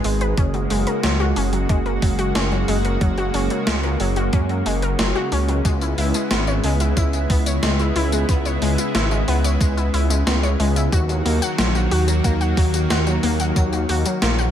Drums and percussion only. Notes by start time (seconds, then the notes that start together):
0.04 open hi-hat
0.21 closed hi-hat
0.37 kick, closed hi-hat
0.54 closed hi-hat
0.70 open hi-hat
0.87 closed hi-hat
1.03 snare, closed hi-hat
1.20 closed hi-hat
1.36 open hi-hat
1.53 closed hi-hat
1.69 kick, closed hi-hat
1.86 closed hi-hat
2.02 kick, open hi-hat
2.19 closed hi-hat
2.35 snare, closed hi-hat
2.52 closed hi-hat
2.68 open hi-hat
2.85 closed hi-hat
3.01 kick, closed hi-hat
3.18 closed hi-hat
3.34 open hi-hat
3.50 closed hi-hat
3.67 snare, closed hi-hat
3.83 closed hi-hat
4.00 open hi-hat
4.16 closed hi-hat
4.33 kick, closed hi-hat
4.49 closed hi-hat
4.66 open hi-hat
4.82 closed hi-hat
4.99 snare, closed hi-hat
5.15 closed hi-hat
5.32 open hi-hat
5.48 closed hi-hat
5.65 kick, closed hi-hat, tambourine
5.81 closed hi-hat, tambourine
5.98 open hi-hat
6.14 closed hi-hat, tambourine
6.31 snare, closed hi-hat, tambourine
6.47 closed hi-hat, tambourine
6.64 open hi-hat
6.80 closed hi-hat, tambourine
6.97 kick, closed hi-hat, tambourine
7.13 closed hi-hat, tambourine
7.30 kick, open hi-hat
7.46 closed hi-hat, tambourine
7.63 snare, closed hi-hat, tambourine
7.79 closed hi-hat, tambourine
7.96 open hi-hat
8.12 closed hi-hat, tambourine
8.29 kick, closed hi-hat, tambourine
8.45 closed hi-hat, tambourine
8.62 open hi-hat
8.78 closed hi-hat, tambourine
8.95 snare, closed hi-hat, tambourine
9.11 closed hi-hat, tambourine
9.28 open hi-hat
9.44 closed hi-hat, tambourine
9.61 kick, closed hi-hat, tambourine
9.77 closed hi-hat, tambourine
9.94 open hi-hat
10.10 closed hi-hat, tambourine
10.27 snare, closed hi-hat, tambourine
10.43 closed hi-hat, tambourine
10.60 open hi-hat
10.76 closed hi-hat, tambourine
10.92 kick, closed hi-hat, tambourine
11.09 closed hi-hat, tambourine
11.26 open hi-hat
11.42 closed hi-hat, tambourine
11.58 snare, closed hi-hat, tambourine
11.75 closed hi-hat, tambourine
11.91 open hi-hat
12.08 closed hi-hat, tambourine
12.24 kick, closed hi-hat, tambourine
12.41 closed hi-hat, tambourine
12.57 kick, open hi-hat
12.74 closed hi-hat, tambourine
12.90 snare, closed hi-hat, tambourine
13.07 closed hi-hat, tambourine
13.23 open hi-hat
13.40 closed hi-hat, tambourine
13.56 kick, closed hi-hat, tambourine
13.73 closed hi-hat, tambourine
13.89 open hi-hat
14.05 closed hi-hat, tambourine
14.22 snare, closed hi-hat, tambourine
14.38 closed hi-hat, tambourine